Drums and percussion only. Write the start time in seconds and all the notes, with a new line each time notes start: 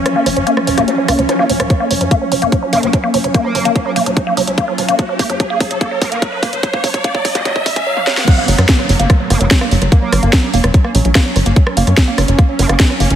0.06 cross-stick, closed hi-hat
0.26 cross-stick, open hi-hat
0.36 closed hi-hat
0.47 closed hi-hat
0.57 cross-stick
0.67 open hi-hat
0.78 cross-stick, closed hi-hat
0.88 closed hi-hat
1.08 cross-stick, open hi-hat
1.19 closed hi-hat
1.29 cross-stick, closed hi-hat
1.50 open hi-hat
1.60 cross-stick, closed hi-hat
1.70 kick, closed hi-hat
1.91 open hi-hat
2.01 closed hi-hat
2.11 kick, closed hi-hat
2.32 open hi-hat
2.42 closed hi-hat
2.52 kick, closed hi-hat
2.73 open hi-hat
2.83 closed hi-hat
2.93 kick, closed hi-hat
3.14 open hi-hat
3.24 closed hi-hat
3.34 kick, closed hi-hat
3.55 open hi-hat
3.65 closed hi-hat
3.76 kick, closed hi-hat
3.96 open hi-hat
4.06 closed hi-hat
4.17 kick, closed hi-hat
4.37 open hi-hat
4.47 closed hi-hat
4.58 kick, closed hi-hat
4.78 open hi-hat
4.89 closed hi-hat
4.99 kick, closed hi-hat
5.19 kick, open hi-hat
5.30 closed hi-hat
5.40 kick, closed hi-hat
5.60 kick, open hi-hat
5.71 closed hi-hat
5.81 kick, closed hi-hat
6.02 kick, open hi-hat
6.12 closed hi-hat
6.22 kick, closed hi-hat
6.43 kick, open hi-hat
6.53 closed hi-hat
6.63 kick, closed hi-hat
6.74 kick
6.84 kick, open hi-hat
6.94 kick, closed hi-hat
7.04 kick, closed hi-hat
7.15 kick
7.25 kick, open hi-hat
7.35 kick, closed hi-hat
7.45 kick, closed hi-hat
7.56 kick
7.66 kick, open hi-hat
7.76 kick, closed hi-hat
7.97 high tom
8.07 snare
8.17 snare
8.28 kick, cross-stick, closed hi-hat, crash
8.48 open hi-hat
8.58 cross-stick, closed hi-hat
8.69 kick, snare, closed hi-hat
8.79 cross-stick
8.89 open hi-hat
9.00 closed hi-hat
9.10 kick, cross-stick, closed hi-hat
9.30 cross-stick, open hi-hat
9.41 closed hi-hat
9.51 kick, snare, closed hi-hat
9.61 cross-stick
9.71 open hi-hat
9.82 cross-stick, closed hi-hat
9.92 kick, closed hi-hat
10.13 cross-stick, open hi-hat
10.23 closed hi-hat
10.33 kick, cross-stick, snare, closed hi-hat
10.54 open hi-hat
10.64 cross-stick, closed hi-hat
10.74 kick, closed hi-hat
10.84 cross-stick
10.95 open hi-hat
11.05 closed hi-hat
11.15 kick, cross-stick, snare, closed hi-hat
11.36 cross-stick, open hi-hat
11.46 closed hi-hat
11.56 kick, closed hi-hat
11.67 cross-stick
11.77 open hi-hat
11.87 cross-stick, closed hi-hat
11.97 kick, snare, closed hi-hat
12.18 cross-stick, open hi-hat
12.28 closed hi-hat
12.39 kick, cross-stick, closed hi-hat
12.59 open hi-hat
12.69 cross-stick, closed hi-hat
12.80 kick, snare, closed hi-hat
12.90 cross-stick
13.00 open hi-hat
13.10 closed hi-hat